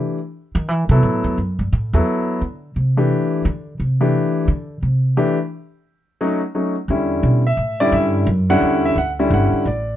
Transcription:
Already playing: E3 A3 D4 G4
0.55 D#3
0.68 E3
0.89 C3 F#3 B3 E4 A4
1.03 A2
1.24 E2
1.38 F#2
1.59 G2
1.73 A2
1.93 E2 F#3 B3 E4 A4
2.41 D3
2.76 C3
2.97 E3 A3 D4 G4
3.45 D3
3.80 C3
4.01 E3 A3 D4 G4
4.48 D3
4.82 C3
5.17 E3 A3 D4 G4
6.21 F#3 A3 C#4 D#4
6.55 F#3 A3 C#4 D#4
6.88 E2 D3 G3 C#4 E4
7.23 B2
7.47 E5
7.57 A2
7.80 D3 G3 C#4 E4 D5
7.92 G2 E5
8.27 F#2
8.50 D3 G3 C#4 E4 F#5
8.61 E2
8.85 E5
8.96 D2 F#5
9.19 D3 G3 C#4 E4
9.30 G1 F#5
9.53 muted upright bass stroke
9.65 A1 D5

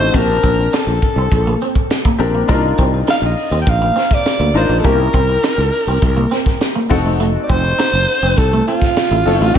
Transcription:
Already playing: C4 D#4 F#4 A4 C5
0.00 A1
0.13 A#1 A#3 C4 C#4 G4 A#4 A5, kick, closed hi-hat
0.20 D4
0.43 A#1 C4, kick, closed hi-hat
0.58 muted clean electric guitar stroke
0.73 D4 A4, snare, closed hi-hat
0.87 A#1, muted clean electric guitar stroke
1.02 kick, closed hi-hat
1.16 C2 C4
1.32 A#1, muted clean electric guitar stroke, kick, closed hi-hat
1.47 A#3
1.62 C4, closed hi-hat
1.75 kick
1.90 snare, closed hi-hat
2.05 A#3, kick
2.18 A#1 C4 D4 G4 A#4, muted clean electric guitar stroke, closed hi-hat
2.35 A#3
2.48 C2 A#3 D4 D#4 F4 A#4, kick, closed hi-hat
2.78 C2 C4, kick, closed hi-hat
2.94 muted clean electric guitar stroke
3.07 D#4 F5, snare, closed hi-hat
3.22 A#1 D#5, muted clean electric guitar stroke
3.37 open hi-hat
3.51 D#2 C4
3.62 G5
3.67 A#1 F5, muted clean electric guitar stroke, kick, closed hi-hat
3.82 A#3
3.96 C4, snare, closed hi-hat
4.11 D5, kick, snare
4.26 snare, closed hi-hat
4.39 D2 A#3
4.54 A1 D4 D#4 F4 A#4 C5, muted clean electric guitar stroke, open hi-hat
4.69 A#1 A#3
4.79 A4
4.83 C2 A#3 C#4 E4 G4 A#4, kick, closed hi-hat
5.13 C2 C4, kick, closed hi-hat
5.29 muted clean electric guitar stroke
5.43 D#4, snare, closed hi-hat
5.58 C#2, muted clean electric guitar stroke
5.72 open hi-hat
5.87 C2 C4
6.02 C2, muted clean electric guitar stroke, kick, closed hi-hat
6.17 A#3
6.31 C4, snare, closed hi-hat
6.46 kick, snare
6.61 snare, closed hi-hat
6.76 A#3
6.89 F1 C4 D#4 F#4 A4, muted clean electric guitar stroke, kick, snare, open hi-hat
7.05 A3
7.20 A3, closed hi-hat
7.43 D5
7.49 F1 C4 C5, kick, closed hi-hat
7.64 muted clean electric guitar stroke
7.79 D#4, snare, closed hi-hat
7.93 F#1, muted clean electric guitar stroke
8.08 open hi-hat
8.23 F1 C4
8.37 C2 A4, muted clean electric guitar stroke, kick, closed hi-hat
8.53 A3
8.67 C4 F4, closed hi-hat
8.82 kick, snare
8.97 snare, closed hi-hat
9.11 A1 A3
9.25 F#1 C4 D#4 F#4 A4, muted clean electric guitar stroke, open hi-hat
9.41 A1 A3
9.55 A#1 C4 D4 G4, kick, closed hi-hat

